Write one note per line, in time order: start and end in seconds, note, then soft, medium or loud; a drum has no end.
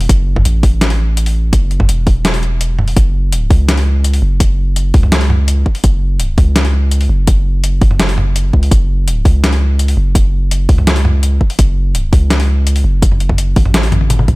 0.01 open hi-hat medium
0.09 0.44 F#1 loud
0.09 kick loud
0.09 closed hi-hat medium
0.36 kick medium
0.36 mid tom medium
0.45 1.52 A1 loud
0.45 closed hi-hat medium
0.63 kick loud
0.63 open hi-hat medium
0.81 snare loud
0.81 closed hi-hat medium
0.90 open hi-hat medium
1.17 closed hi-hat medium
1.26 open hi-hat medium
1.53 1.87 F#1 loud
1.53 kick loud
1.53 closed hi-hat medium
1.71 closed hi-hat soft
1.80 kick medium
1.80 mid tom medium
1.89 2.95 E1 loud
1.89 closed hi-hat medium
2.07 kick loud
2.07 open hi-hat medium
2.25 snare loud
2.25 closed hi-hat medium
2.34 open hi-hat medium
2.43 closed hi-hat soft
2.61 closed hi-hat medium
2.79 mid tom medium
2.88 open hi-hat medium
2.97 3.49 F#1 loud
2.97 kick loud
2.97 closed hi-hat medium
3.32 closed hi-hat medium
3.50 4.21 C#2 loud
3.50 kick loud
3.50 open hi-hat medium
3.69 snare loud
3.69 closed hi-hat medium
3.77 open hi-hat medium
4.04 closed hi-hat medium
4.14 open hi-hat medium
4.22 4.93 F#1 loud
4.40 kick loud
4.40 closed hi-hat medium
4.76 closed hi-hat medium
4.94 5.65 C#2 loud
4.94 kick loud
4.94 open hi-hat medium
5.03 mid tom medium
5.12 snare loud
5.12 closed hi-hat medium
5.21 open hi-hat medium
5.30 mid tom medium
5.48 closed hi-hat medium
5.66 kick medium
5.75 open hi-hat medium
5.84 6.36 F#1 loud
5.84 kick loud
5.84 closed hi-hat medium
6.20 closed hi-hat medium
6.38 7.08 C#2 loud
6.38 kick loud
6.38 open hi-hat medium
6.56 snare loud
6.56 closed hi-hat medium
6.65 open hi-hat medium
6.91 closed hi-hat medium
7.01 open hi-hat medium
7.09 7.80 F#1 loud
7.27 kick loud
7.27 closed hi-hat medium
7.64 closed hi-hat medium
7.81 8.52 F#1 loud
7.81 kick loud
7.81 open hi-hat medium
7.91 mid tom medium
8.00 snare loud
8.00 closed hi-hat medium
8.09 open hi-hat medium
8.18 mid tom medium
8.36 closed hi-hat medium
8.53 8.70 C#2 loud
8.53 kick medium
8.63 open hi-hat medium
8.71 9.24 F#1 loud
8.71 kick loud
8.71 closed hi-hat medium
9.08 closed hi-hat medium
9.25 9.96 C#2 loud
9.25 kick loud
9.25 open hi-hat medium
9.44 snare loud
9.44 closed hi-hat medium
9.53 open hi-hat medium
9.79 closed hi-hat medium
9.88 open hi-hat medium
9.97 10.68 F#1 medium
10.15 kick loud
10.15 closed hi-hat medium
10.51 closed hi-hat medium
10.69 11.39 C#2 loud
10.69 kick loud
10.69 open hi-hat medium
10.78 mid tom medium
10.87 snare loud
10.87 closed hi-hat medium
10.96 open hi-hat medium
11.05 mid tom medium
11.23 closed hi-hat medium
11.41 kick medium
11.50 open hi-hat medium
11.59 12.11 F#1 loud
11.59 kick loud
11.59 closed hi-hat medium
11.95 closed hi-hat medium
12.13 12.83 C#2 loud
12.13 kick loud
12.13 open hi-hat medium
12.30 snare loud
12.30 closed hi-hat medium
12.40 open hi-hat medium
12.67 closed hi-hat medium
12.76 open hi-hat medium
12.84 13.55 F#1 loud
13.02 kick loud
13.02 closed hi-hat medium
13.12 mid tom soft
13.20 closed hi-hat soft
13.29 kick medium
13.29 mid tom medium
13.38 closed hi-hat medium
13.56 14.06 A1 loud
13.56 kick loud
13.56 open hi-hat medium
13.65 mid tom medium
13.74 snare loud
13.74 closed hi-hat medium
13.83 open hi-hat medium
13.92 closed hi-hat soft
13.92 mid tom medium
13.92 high tom medium
14.01 high tom medium
14.06 14.27 G#1 loud
14.06 closed hi-hat medium
14.06 mid tom medium
14.19 mid tom medium
14.28 14.36 F#1 loud
14.28 kick medium
14.28 closed hi-hat soft